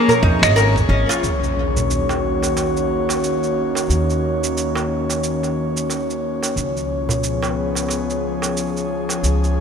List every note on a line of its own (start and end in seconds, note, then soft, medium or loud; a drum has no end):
0.00 1.22 F3 medium
0.00 6.56 A#3 medium
0.00 9.60 C#4 medium
0.00 3.38 G#4 medium
0.00 9.60 C#5 medium
0.08 0.22 A#4 medium
0.08 darbuka tek soft
0.08 darbuka dum medium
0.08 cabasa soft
0.23 0.43 F2 medium
0.23 0.41 D#4 medium
0.23 kick loud
0.23 darbuka ka soft
0.42 0.82 G#1 medium
0.42 0.50 D#5 medium
0.42 finger snap medium
0.42 cabasa medium
0.42 claves medium
0.56 0.75 A#4 loud
0.56 darbuka ka medium
0.56 cabasa medium
0.76 kick medium
0.76 darbuka ka soft
0.76 cabasa soft
0.89 1.02 G#1 loud
0.89 1.08 C#4 medium
1.09 1.22 F4 loud
1.09 darbuka ka medium
1.09 darbuka tek soft
1.09 cabasa medium
1.23 3.87 D#2 medium
1.23 6.57 D#3 medium
1.23 impact medium
1.23 cabasa soft
1.43 cabasa soft
1.49 6.57 F#4 medium
1.77 darbuka dum medium
1.77 cabasa medium
1.90 cabasa medium
2.09 darbuka tek medium
2.09 cabasa soft
2.43 darbuka ka medium
2.43 cabasa medium
2.57 darbuka ka medium
2.57 cabasa soft
2.77 cabasa soft
3.09 darbuka tek medium
3.09 cabasa medium
3.24 cabasa soft
3.43 cabasa soft
3.75 darbuka ka medium
3.75 cabasa medium
3.89 6.53 D#2 medium
3.89 cabasa soft
4.10 cabasa soft
4.43 cabasa medium
4.57 cabasa soft
4.76 darbuka tek medium
4.76 cabasa soft
5.10 darbuka ka soft
5.10 cabasa medium
5.24 cabasa soft
5.43 darbuka tek soft
5.43 cabasa soft
5.77 cabasa medium
5.90 darbuka ka soft
5.90 cabasa soft
6.10 cabasa soft
6.43 darbuka ka medium
6.43 cabasa medium
6.56 9.20 C#2 medium
6.56 9.60 F3 medium
6.56 cabasa soft
6.77 cabasa soft
6.90 9.23 B3 medium
6.90 9.60 G#4 medium
7.09 darbuka dum medium
7.09 cabasa medium
7.24 cabasa medium
7.43 darbuka tek medium
7.43 cabasa soft
7.75 darbuka ka medium
7.75 cabasa medium
7.89 darbuka ka soft
7.89 cabasa medium
8.10 cabasa soft
8.42 darbuka tek medium
8.42 cabasa medium
8.57 cabasa soft
8.77 cabasa soft
9.09 darbuka ka medium
9.09 cabasa medium
9.23 9.60 C#2 medium
9.23 cabasa medium
9.35 9.60 A#3 medium
9.44 cabasa soft